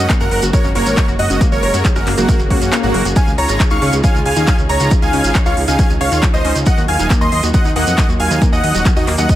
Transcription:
Already playing: G#3 A#3 F#4 D#5
0.10 A#3, kick, clap, closed hi-hat, shekere
0.20 F#1 A#4 F#5, shekere
0.31 F#1 A#4, open hi-hat
0.42 F#1 F#4, closed hi-hat, shekere
0.53 A#4 C#5, kick, closed hi-hat, shekere
0.64 F#1 C#4, shekere
0.75 F#1 A#3 A#4 C#5, open hi-hat
0.86 G#1, closed hi-hat, shekere
0.97 A#4, kick, clap, closed hi-hat, shekere
1.08 F#1 F#4, shekere
1.19 F#1 F#4 D#5, open hi-hat
1.30 F#1 C#4, closed hi-hat, shekere
1.41 A#3 G#4, kick, closed hi-hat, shekere
1.52 F#1 A#4 C#5, shekere
1.63 F#1 A#4, open hi-hat
1.74 F#2 F#4, closed hi-hat, shekere
1.85 kick, clap, closed hi-hat, shekere
1.96 F#1 C#4 F#4 A#4, shekere
2.07 F#1 A#3, clap, open hi-hat
2.18 F#1 A#3 F#4, closed hi-hat, shekere
2.29 A#4, kick, closed hi-hat, swell, shekere
2.39 F#1 F#4, shekere
2.50 C#2 A#3 F#4, kick, open hi-hat
2.61 F#2 C#4, closed hi-hat, shekere
2.72 A#3, clap, closed hi-hat, shekere
2.83 G#1 A#3 F#4, shekere
2.94 F#1 A#4, open hi-hat
3.05 F#1 F#4, closed hi-hat, shekere
3.16 C#3 C#4 D#4 F4 F5 G#5, kick, closed hi-hat, shekere
3.27 C#2, shekere
3.38 C#2 C#5 A#5, open hi-hat
3.49 G#1 F4, closed hi-hat, shekere
3.60 kick, clap, closed hi-hat, shekere
3.70 C#2 D#4 F5 C#6, shekere
3.82 C#2 C#4, open hi-hat
3.93 C#2, closed hi-hat, shekere
4.04 C#5 F5 G#5, kick, closed hi-hat, shekere
4.15 C#2 F4, shekere
4.26 C#2 F5 G#5, open hi-hat
4.36 D#2 D#4, closed hi-hat, shekere
4.47 C#4, kick, clap, closed hi-hat, shekere
4.58 C#2, shekere
4.69 C#2 C#5 A#5, open hi-hat
4.80 C#2 F4, closed hi-hat, shekere
4.91 kick, closed hi-hat, shekere
5.02 C#2 D#4 F5 G#5, shekere
5.13 C#2 C#4, open hi-hat
5.24 G#1, closed hi-hat, shekere
5.34 C#5, kick, clap, closed hi-hat, shekere
5.46 C#2 F4 C#5 F5, shekere
5.57 C#2, open hi-hat
5.68 C#2 D#4 F5 G#5, closed hi-hat, shekere
5.79 C#4, kick, closed hi-hat, shekere
5.90 C#2, shekere
6.01 C#2 C#5 F5, open hi-hat
6.12 D#2 F4, closed hi-hat, shekere
6.22 kick, clap, closed hi-hat, shekere
6.34 C#2 D#4 C5 D#5, shekere
6.45 C#2 C#4, open hi-hat
6.55 C#2, closed hi-hat, shekere
6.66 F#3 A#3 D#5 F#5, kick, closed hi-hat, shekere
6.77 D#2 F#4, shekere
6.88 D#2 F5 G#5, open hi-hat
6.99 D#1 D#4, closed hi-hat, shekere
7.10 A#3, kick, clap, closed hi-hat, shekere
7.21 D#2 D#5 C6, shekere
7.32 D#2 D#5, open hi-hat
7.43 D#2 F#4, closed hi-hat, shekere
7.54 D#5 F#5, kick, closed hi-hat, shekere
7.65 D#2 D#4, shekere
7.76 D#2 A#3 D#5 F#5, open hi-hat
7.87 F2, closed hi-hat, shekere
7.98 D#5, kick, clap, closed hi-hat, shekere
8.09 D#2 F#4, shekere
8.20 D#2 F5 G#5, open hi-hat
8.31 D#2 D#4, closed hi-hat, shekere
8.42 A#3, kick, closed hi-hat, shekere
8.52 D#2 D#5 F#5, shekere
8.64 D#2 D#5, open hi-hat
8.74 D#1 F#4, closed hi-hat, shekere
8.85 kick, clap, closed hi-hat, shekere
8.96 D#2 D#4 F#4 D#5, shekere
9.07 D#2 A#3, clap, open hi-hat
9.18 D#2 D#5 F#5, closed hi-hat, shekere
9.29 D#5, kick, closed hi-hat, shekere

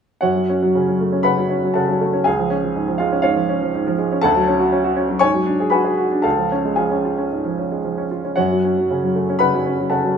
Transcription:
0.21 F#2 F#4 C#5 F#5
0.36 F#3
0.50 C#4
0.62 F#3
0.75 C#3
0.88 F#3
1.01 A3
1.12 C#4
1.23 C#3 B4 F#5 B5
1.38 F#3
1.50 C#4
1.63 F#3
1.74 C#3 A4 F#5 A5
1.88 F#3
2.01 A3
2.13 C#4
2.24 C#2 G#4 F5 G#5
2.38 F3
2.50 C#4
2.63 F3
2.76 G#2
2.88 F3
2.98 G#3 F4 F5
3.12 C#4
3.22 G#2 F4 C#5 F5
3.36 F3
3.49 C#4
3.62 F3
3.74 G#2
3.87 F3
3.98 G#3
4.12 C#4
4.21 D2 A4 F#5 A5
4.36 F#3
4.48 C#4
4.59 F#4
4.72 C#4
4.84 F#4
4.96 C#4
5.09 F#3
5.19 G#2 C#5 G#5 C#6
5.34 F#3
5.46 D4
5.60 G#4
5.70 F#4 B4 G#5 B5
5.84 G#4
5.98 F#4
6.11 D4
6.22 C#2 A4 F5 A5
6.37 F3
6.52 C#4
6.65 G#3
6.76 F3 G#4 F5 G#5
6.91 C#4
7.05 F4
7.18 C#4
7.32 G#2
7.45 F3
7.59 C#4
7.72 G#3
7.84 F3
7.98 C#4
8.11 F4
8.25 C#4
8.36 F#2 F#4 C#5 F#5
8.51 F#3
8.64 C#4
8.77 F#3
8.90 C#3
9.04 F#3
9.16 A3
9.30 C#4
9.39 C#3 B4 F#5 B5
9.54 F#3
9.66 C#4
9.79 F#3
9.90 C#3 A4 F#5 A5
10.04 F#3

